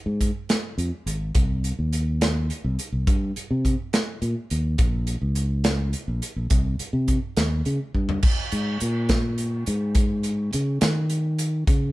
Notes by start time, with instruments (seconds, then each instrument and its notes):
0.06 fingered electric bass G#2
0.21 kick, closed hi-hat
0.49 snare, closed hi-hat
0.78 fingered electric bass F2, closed hi-hat
1.06 fingered electric bass G#1, closed hi-hat
1.35 fingered electric bass C2, kick, closed hi-hat
1.64 closed hi-hat
1.79 fingered electric bass D#2
1.93 closed hi-hat
2.21 snare, closed hi-hat
2.50 closed hi-hat
2.64 fingered electric bass C2
2.79 closed hi-hat
2.92 fingered electric bass C2
3.07 fingered electric bass G2, kick, closed hi-hat
3.36 muted fingered electric bass stroke, closed hi-hat
3.51 fingered electric bass C3
3.65 kick, closed hi-hat
3.93 snare, closed hi-hat
4.22 fingered electric bass A#2, closed hi-hat
4.50 fingered electric bass D#2, closed hi-hat
4.78 fingered electric bass A#1, kick, closed hi-hat
5.07 closed hi-hat
5.22 fingered electric bass C#2
5.35 closed hi-hat
5.64 snare, closed hi-hat
5.93 closed hi-hat
6.08 fingered electric bass A#1
6.22 closed hi-hat
6.36 fingered electric bass A#1
6.50 fingered electric bass C2, kick, closed hi-hat
6.79 muted fingered electric bass stroke, closed hi-hat
6.93 fingered electric bass C3
7.08 kick, closed hi-hat
7.37 fingered electric bass D#2, snare, closed hi-hat
7.65 fingered electric bass C#3, closed hi-hat
7.94 fingered electric bass G2, kick
8.09 floor tom
8.23 kick, crash
8.52 fingered electric bass G#2, closed hi-hat
8.80 fingered electric bass A#2, closed hi-hat
9.09 kick, snare, closed hi-hat
9.38 closed hi-hat
9.66 fingered electric bass G#2, closed hi-hat
9.95 kick, closed hi-hat
10.23 closed hi-hat
10.53 fingered electric bass C#3, closed hi-hat
10.81 fingered electric bass D#3, snare, closed hi-hat
11.10 closed hi-hat
11.38 closed hi-hat
11.67 fingered electric bass C#3, kick, closed hi-hat